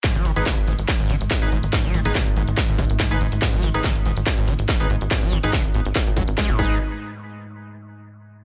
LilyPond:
<<
  \new Staff \with { instrumentName = "Analog polysynth" } { \time 4/4 \key gis \minor \tempo 4 = 142 r8. <dis' gis' b'>16 r2 r16 <dis' gis' b'>16 r8 | r8. <dis' gis' b'>16 r2 r16 <dis' gis' b'>16 r8 | r8. <dis' gis' b'>16 r2 r16 <dis' gis' b'>16 r8 | r8. <dis' gis' b'>16 r2 r8 <dis' gis' b'>8 |
r1 | }
  \new Staff \with { instrumentName = "Acid bass" } { \clef bass \time 4/4 \key gis \minor gis,16 fis16 dis16 gis,,16 dis16 r16 gis,16 r8 gis,16 dis16 r8 gis,16 gis,16 r16 | gis,16 fis16 dis16 gis,,16 dis16 r16 gis,16 r8 gis,16 dis16 r8 gis,16 gis,16 r16 | gis,16 fis16 dis16 gis,,16 dis16 r16 gis,16 r8 gis,16 dis16 r8 gis,16 gis,16 r16 | gis,16 fis16 dis16 gis,,16 dis16 r16 gis,16 r8 gis,16 fis16 r16 gis16 gis,16 gis,8 |
r1 | }
  \new Staff \with { instrumentName = "Synth drone" } { \clef bass \time 4/4 \key gis \minor gis,1~ | gis,1~ | gis,1~ | gis,1 |
r1 | }
  \new Staff \with { instrumentName = "Analog synth bass" } { \clef bass \time 4/4 \key gis \minor r16 gis,,16 gis,,16 gis,,16 r16 gis,,16 gis,,16 gis,,16 r16 gis,,16 gis,,16 gis,,16 r16 gis,,16 gis,,16 gis,,16 | r16 gis,,16 gis,,16 gis,,16 r16 gis,,16 gis,,16 gis,,16 r16 gis,,16 gis,,16 gis,,16 r16 gis,,16 gis,,16 gis,,16 | r16 gis,,16 gis,,16 gis,,16 r16 gis,,16 gis,,16 gis,,16 r16 gis,,16 gis,,16 gis,,16 r16 gis,,16 gis,,16 gis,,16 | r16 gis,,16 gis,,16 gis,,16 r16 gis,,16 gis,,16 gis,,16 r16 gis,,16 gis,,16 gis,,16 r16 gis,,16 gis,,8 |
r1 | }
  \new DrumStaff \with { instrumentName = "Drums" } \drummode { \time 4/4 <hc hh bd>16 hh16 hho16 hh16 <hc hh bd>16 hh16 hho16 hh16 <hc hh bd>16 hh16 hho16 hh16 <hc hh bd>16 hh16 hho16 hh16 | <hc hh bd>16 hh16 hho16 hh16 <hc hh bd>16 hh16 hho16 hh16 <hc hh bd>16 hh16 <hho bd>16 hh16 <hc hh bd>16 hh16 hho16 hh16 | <hc hh bd>16 hh16 hho16 hh16 <hc hh bd>16 hh16 hho16 hh16 <hc hh bd>16 hh16 hho16 hh16 <hc hh bd>16 hh16 hho16 hh16 | <hc hh bd>16 hh16 hho16 hh16 <hc hh bd>16 hh16 hho16 hh16 <hc hh bd>16 hh16 <hho bd>16 hh16 <hc hh bd>16 hh16 bd8 |
r4 r4 r4 r4 | }
>>